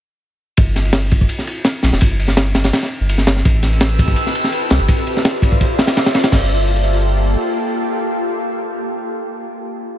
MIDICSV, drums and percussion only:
0, 0, Header, 1, 2, 480
1, 0, Start_track
1, 0, Tempo, 359281
1, 767, Time_signature, 4, 2, 24, 8
1, 13335, End_track
2, 0, Start_track
2, 0, Title_t, "Drums"
2, 765, Note_on_c, 9, 51, 87
2, 773, Note_on_c, 9, 36, 109
2, 898, Note_off_c, 9, 51, 0
2, 907, Note_off_c, 9, 36, 0
2, 1013, Note_on_c, 9, 38, 39
2, 1014, Note_on_c, 9, 51, 69
2, 1136, Note_off_c, 9, 51, 0
2, 1136, Note_on_c, 9, 51, 43
2, 1147, Note_off_c, 9, 38, 0
2, 1240, Note_on_c, 9, 38, 124
2, 1241, Note_off_c, 9, 51, 0
2, 1241, Note_on_c, 9, 51, 92
2, 1373, Note_off_c, 9, 38, 0
2, 1374, Note_off_c, 9, 51, 0
2, 1486, Note_on_c, 9, 51, 62
2, 1494, Note_on_c, 9, 36, 103
2, 1619, Note_off_c, 9, 51, 0
2, 1620, Note_off_c, 9, 36, 0
2, 1620, Note_on_c, 9, 36, 96
2, 1721, Note_on_c, 9, 51, 82
2, 1753, Note_off_c, 9, 36, 0
2, 1851, Note_on_c, 9, 38, 42
2, 1854, Note_off_c, 9, 51, 0
2, 1965, Note_on_c, 9, 51, 70
2, 1985, Note_off_c, 9, 38, 0
2, 2099, Note_off_c, 9, 51, 0
2, 2200, Note_on_c, 9, 38, 103
2, 2205, Note_on_c, 9, 51, 84
2, 2333, Note_off_c, 9, 38, 0
2, 2339, Note_off_c, 9, 51, 0
2, 2442, Note_on_c, 9, 38, 58
2, 2462, Note_on_c, 9, 51, 75
2, 2575, Note_off_c, 9, 38, 0
2, 2577, Note_on_c, 9, 38, 53
2, 2595, Note_off_c, 9, 51, 0
2, 2681, Note_on_c, 9, 51, 94
2, 2696, Note_on_c, 9, 36, 104
2, 2711, Note_off_c, 9, 38, 0
2, 2815, Note_off_c, 9, 51, 0
2, 2820, Note_on_c, 9, 51, 41
2, 2829, Note_off_c, 9, 36, 0
2, 2931, Note_off_c, 9, 51, 0
2, 2931, Note_on_c, 9, 51, 73
2, 3044, Note_on_c, 9, 38, 50
2, 3065, Note_off_c, 9, 51, 0
2, 3166, Note_off_c, 9, 38, 0
2, 3166, Note_on_c, 9, 38, 121
2, 3166, Note_on_c, 9, 51, 88
2, 3299, Note_off_c, 9, 51, 0
2, 3300, Note_off_c, 9, 38, 0
2, 3404, Note_on_c, 9, 38, 105
2, 3408, Note_on_c, 9, 51, 74
2, 3526, Note_off_c, 9, 51, 0
2, 3526, Note_on_c, 9, 51, 84
2, 3534, Note_off_c, 9, 38, 0
2, 3534, Note_on_c, 9, 38, 104
2, 3650, Note_off_c, 9, 51, 0
2, 3650, Note_on_c, 9, 51, 81
2, 3651, Note_off_c, 9, 38, 0
2, 3651, Note_on_c, 9, 38, 106
2, 3778, Note_off_c, 9, 38, 0
2, 3778, Note_on_c, 9, 38, 53
2, 3784, Note_off_c, 9, 51, 0
2, 3912, Note_off_c, 9, 38, 0
2, 4129, Note_on_c, 9, 51, 75
2, 4249, Note_on_c, 9, 38, 47
2, 4263, Note_off_c, 9, 51, 0
2, 4365, Note_on_c, 9, 51, 64
2, 4369, Note_off_c, 9, 38, 0
2, 4369, Note_on_c, 9, 38, 109
2, 4496, Note_off_c, 9, 38, 0
2, 4496, Note_on_c, 9, 38, 47
2, 4498, Note_off_c, 9, 51, 0
2, 4611, Note_on_c, 9, 51, 85
2, 4613, Note_on_c, 9, 36, 108
2, 4629, Note_off_c, 9, 38, 0
2, 4745, Note_off_c, 9, 51, 0
2, 4747, Note_off_c, 9, 36, 0
2, 4844, Note_on_c, 9, 51, 71
2, 4848, Note_on_c, 9, 38, 41
2, 4977, Note_off_c, 9, 51, 0
2, 4979, Note_on_c, 9, 51, 45
2, 4981, Note_off_c, 9, 38, 0
2, 5083, Note_off_c, 9, 51, 0
2, 5083, Note_on_c, 9, 51, 94
2, 5088, Note_on_c, 9, 38, 120
2, 5217, Note_off_c, 9, 51, 0
2, 5222, Note_off_c, 9, 38, 0
2, 5329, Note_on_c, 9, 36, 98
2, 5332, Note_on_c, 9, 51, 76
2, 5448, Note_off_c, 9, 36, 0
2, 5448, Note_on_c, 9, 36, 104
2, 5466, Note_off_c, 9, 51, 0
2, 5557, Note_on_c, 9, 51, 78
2, 5581, Note_off_c, 9, 36, 0
2, 5691, Note_off_c, 9, 51, 0
2, 5698, Note_on_c, 9, 38, 42
2, 5811, Note_on_c, 9, 51, 86
2, 5832, Note_off_c, 9, 38, 0
2, 5935, Note_on_c, 9, 38, 43
2, 5945, Note_off_c, 9, 51, 0
2, 6041, Note_on_c, 9, 51, 59
2, 6068, Note_off_c, 9, 38, 0
2, 6175, Note_off_c, 9, 51, 0
2, 6282, Note_on_c, 9, 51, 70
2, 6291, Note_on_c, 9, 38, 113
2, 6416, Note_off_c, 9, 51, 0
2, 6425, Note_off_c, 9, 38, 0
2, 6524, Note_on_c, 9, 51, 95
2, 6527, Note_on_c, 9, 36, 116
2, 6657, Note_off_c, 9, 51, 0
2, 6660, Note_off_c, 9, 36, 0
2, 6661, Note_on_c, 9, 51, 40
2, 6768, Note_off_c, 9, 51, 0
2, 6768, Note_on_c, 9, 51, 60
2, 6902, Note_off_c, 9, 51, 0
2, 6904, Note_on_c, 9, 38, 50
2, 7012, Note_on_c, 9, 51, 95
2, 7014, Note_off_c, 9, 38, 0
2, 7014, Note_on_c, 9, 38, 127
2, 7146, Note_off_c, 9, 51, 0
2, 7147, Note_off_c, 9, 38, 0
2, 7244, Note_on_c, 9, 36, 104
2, 7254, Note_on_c, 9, 51, 68
2, 7376, Note_off_c, 9, 36, 0
2, 7376, Note_on_c, 9, 36, 103
2, 7388, Note_off_c, 9, 51, 0
2, 7491, Note_on_c, 9, 51, 73
2, 7492, Note_off_c, 9, 36, 0
2, 7492, Note_on_c, 9, 36, 97
2, 7625, Note_off_c, 9, 51, 0
2, 7626, Note_off_c, 9, 36, 0
2, 7731, Note_on_c, 9, 38, 96
2, 7736, Note_on_c, 9, 51, 73
2, 7847, Note_off_c, 9, 38, 0
2, 7847, Note_on_c, 9, 38, 101
2, 7854, Note_off_c, 9, 51, 0
2, 7854, Note_on_c, 9, 51, 83
2, 7972, Note_off_c, 9, 51, 0
2, 7972, Note_on_c, 9, 51, 73
2, 7976, Note_off_c, 9, 38, 0
2, 7976, Note_on_c, 9, 38, 110
2, 8096, Note_off_c, 9, 51, 0
2, 8096, Note_on_c, 9, 51, 85
2, 8101, Note_off_c, 9, 38, 0
2, 8101, Note_on_c, 9, 38, 110
2, 8212, Note_off_c, 9, 51, 0
2, 8212, Note_on_c, 9, 51, 80
2, 8213, Note_off_c, 9, 38, 0
2, 8213, Note_on_c, 9, 38, 100
2, 8331, Note_off_c, 9, 51, 0
2, 8331, Note_on_c, 9, 51, 76
2, 8333, Note_off_c, 9, 38, 0
2, 8333, Note_on_c, 9, 38, 102
2, 8446, Note_on_c, 9, 36, 105
2, 8447, Note_off_c, 9, 38, 0
2, 8447, Note_on_c, 9, 38, 102
2, 8447, Note_on_c, 9, 46, 91
2, 8465, Note_off_c, 9, 51, 0
2, 8580, Note_off_c, 9, 36, 0
2, 8580, Note_off_c, 9, 38, 0
2, 8580, Note_off_c, 9, 46, 0
2, 13335, End_track
0, 0, End_of_file